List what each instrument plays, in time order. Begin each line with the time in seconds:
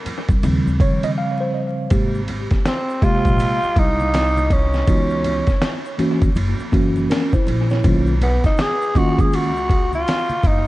Already playing: tine electric piano A#4
0.06 ride, low conga, shaker
0.28 upright bass C2, kick, ride, shaker
0.43 upright bass D#2, tine electric piano C#3 F3 G3 C4, ride, shaker
0.66 upright bass D#2, shaker
0.80 upright bass D#3, tine electric piano C#5, kick, ride, shaker
1.03 tine electric piano D#5, ride, high conga, shaker
1.18 tine electric piano F5
1.41 tine electric piano C5
1.90 upright bass G#1, tine electric piano C3 G#3 A#3 G4, kick, ride, shaker
2.15 shaker
2.28 ride, high conga, low conga, shaker
2.51 kick, snare, ride, high conga, shaker
2.65 tenor saxophone C4, snare, hi-hat pedal, ride, high conga, shaker
2.90 shaker
3.02 tine electric piano C3 G#3 A#3 G4, tenor saxophone F4, kick, ride, low conga, shaker
3.25 upright bass A#1, kick, ride, shaker
3.39 ride, shaker
3.63 muted upright bass stroke, shaker
3.76 upright bass C2, tenor saxophone D#4, kick, ride, shaker
4.00 high conga, shaker
4.14 snare, hi-hat pedal, ride, shaker
4.37 high conga, shaker
4.50 tenor saxophone C#4, kick, ride, low conga, shaker
4.73 snare, shaker
4.87 upright bass C#2, tine electric piano E3 B3 D#4 F#4, kick, ride, shaker
5.10 shaker
5.24 ride, high conga, low conga, shaker
5.47 kick, snare, ride, high conga, shaker
5.62 snare, hi-hat pedal, ride, high conga, shaker
5.85 shaker
5.98 tine electric piano E3 A#3 C#4 F#4, ride, low conga, shaker
6.22 upright bass D#2, kick, ride, shaker
6.35 upright bass F#1, ride, shaker
6.59 muted upright bass stroke, shaker
6.72 upright bass F#1, tine electric piano E3 A#3 C#4 F#4, kick, ride, shaker
6.96 high conga, shaker
7.10 tine electric piano C#4 A#4, snare, hi-hat pedal, ride, shaker
7.33 tine electric piano E4 C5, kick, high conga, shaker
7.47 upright bass A#1, ride, low conga, shaker
7.70 tine electric piano E4 C#5, snare, shaker
7.84 upright bass B1, tine electric piano D#3 A#3 C#4 F4, kick, ride, shaker
8.07 shaker
8.21 tenor saxophone B3, ride, high conga, low conga, shaker
8.44 tenor saxophone D#4, kick, snare, ride, high conga, shaker
8.57 tenor saxophone G#4, snare, hi-hat pedal, ride, high conga, shaker
8.82 shaker
8.95 tine electric piano D#3 A#3 C#4 F4, tenor saxophone F#4, kick, ride, low conga, shaker
9.18 upright bass C#2, tenor saxophone G#4, kick, ride, shaker
9.32 tenor saxophone F#4, ride, shaker
9.56 shaker
9.69 kick, ride, shaker
9.93 tenor saxophone F4, high conga, shaker
10.07 snare, hi-hat pedal, ride, shaker
10.30 high conga, shaker
10.43 upright bass F#1, tenor saxophone D#4, kick, ride, low conga, shaker